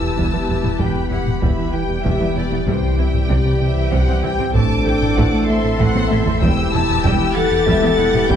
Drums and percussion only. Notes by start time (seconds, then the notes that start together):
0.18 taiko
0.64 taiko low-mid
0.80 taiko
1.27 taiko low-mid
1.42 taiko
2.05 taiko
2.52 taiko low-mid
2.68 taiko
3.14 taiko low-mid
3.30 taiko
3.92 taiko
4.39 taiko low-mid
4.55 taiko
5.02 taiko low-mid
5.18 taiko
5.80 taiko
5.95 taiko high
6.11 taiko high
6.27 taiko low
6.42 taiko
6.90 taiko low-mid
7.05 taiko
7.68 taiko
8.14 taiko low-mid
8.30 taiko